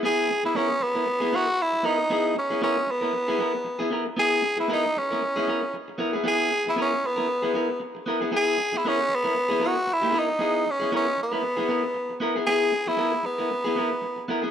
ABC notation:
X:1
M:4/4
L:1/16
Q:"Swing 16ths" 1/4=116
K:C#dor
V:1 name="Clean electric guitar"
[B,EG]2 z [B,EG] [B,EA] z2 [B,EA] z [B,EG] [B,EA] z3 [B,EA] z | [B,EG]2 z [B,EG] [B,EA] z2 [B,EA] z [B,EG] [B,EA] z2 [B,EG] [B,EA] z | [B,EG]2 z [B,EG] [B,EA] z2 [B,EA] z [B,EG] [B,EA] z3 [B,EA] [B,EG] | [B,EG]2 z [B,EG] [B,EA] z2 [B,EA] z [B,EG] [B,EA] z3 [B,EA] [B,EG] |
[B,EG]2 z [B,EG] [B,EA] z2 [B,EA] z [B,EG] [B,EA] z2 [B,EG] [B,EA] z | [B,EG]2 z [B,EG] [B,EA] z2 [B,EA] z [B,EG] [B,EA] z3 [B,EA] [B,EG] | [B,EG]2 z [B,EG] [B,EA] z2 [B,EA] z [B,EG] [B,EA] z3 [B,EA] [B,EG] |]
V:2 name="Tenor saxophone"
G3 E C2 B,4 F2 E2 D2- | D2 C2 C2 B,8 z2 | G3 E D2 C6 z4 | G3 E C2 B,6 z4 |
G3 E C2 B,4 F2 E2 D2- | D2 C2 C2 B,8 z2 | G3 E3 B,8 z2 |]